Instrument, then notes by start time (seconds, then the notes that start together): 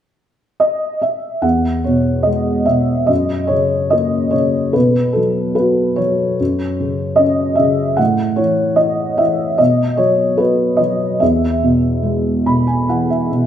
felt piano
0.60 D#5
1.02 E5
1.42 E2 F#5
1.84 B2 C#5
2.23 G#3 D#5
2.66 B2 E5
3.07 F#2 D#5
3.47 C#3 C#5
3.90 A#3 D#5
4.31 C#3 C#5
4.73 B2 B4
5.13 F#3 A4
5.55 B4
5.60 F#4
5.96 F#3 C#5
6.40 F#2
6.80 C#3
7.16 C#4 D#5
7.55 C#3 E5
7.97 A2 F#5
8.36 E3 C#5
8.76 D#5
8.80 E4
9.18 E3 E5
9.58 B2 D#5
9.97 F#3 C#5
10.37 F#4 B4
10.77 F#3 D#5
11.20 E2 E5
11.63 B2
12.03 G#3
12.46 B2 B5
12.67 G#5
12.89 E3 F#5
13.10 E5
13.31 B2